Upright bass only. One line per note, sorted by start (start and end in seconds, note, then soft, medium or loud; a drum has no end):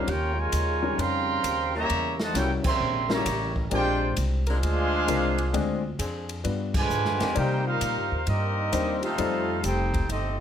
0.07 0.52 D#2 medium
0.53 0.97 D#2 medium
0.98 1.42 F2 medium
1.44 1.88 D#2 medium
1.90 2.33 E2 medium
2.34 2.62 C2 medium
2.65 muted upright bass stroke soft
2.80 3.24 A#1 loud
3.26 3.70 A1 loud
3.72 4.16 A#1 loud
4.18 4.62 C2 loud
4.63 5.07 D2 loud
5.08 5.52 C2 loud
5.54 5.98 D2 loud
5.99 6.43 F2 medium
6.45 6.89 G2 medium
6.90 7.05 G#2 loud
7.05 7.20 G2 medium
7.21 7.35 F2 medium
7.37 7.80 C3 loud
7.81 7.97 A#2 loud
7.97 8.11 G2 medium
8.11 8.26 D#2 medium
8.27 8.71 G2 medium
8.73 9.17 D#2 loud
9.19 9.62 F2 medium
9.64 10.08 F1 loud
10.09 10.40 G1 medium